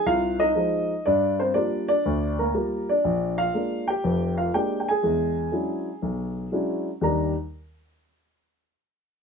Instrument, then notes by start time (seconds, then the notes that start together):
grand piano
0.06 C2 F4 F5
0.40 D#4 D#5
0.55 F3 G#3 D#4
1.06 G2 D4 D5
1.40 C4 C5
1.54 G3 A#3 D4 F4 D5
1.88 D4 D5
2.06 D2
2.39 A#3 A#4
2.55 G3 A#3 F4
2.89 D4 D5
3.04 A#1
3.38 F4 F5
3.54 G#3 A#3 D4
3.88 G4 G5
4.04 F1 F2
4.38 F4 F5
4.54 G#3 A#3 D4 G4 G5
4.80 G5
4.89 G#4 G#5
5.03 E2 G#3
5.52 F#3 G#3 C#4 D4 E4
6.02 B1
6.52 F#3 G#3 C#4 D4 E4
7.01 D#2 D#3 G3 D4 A#5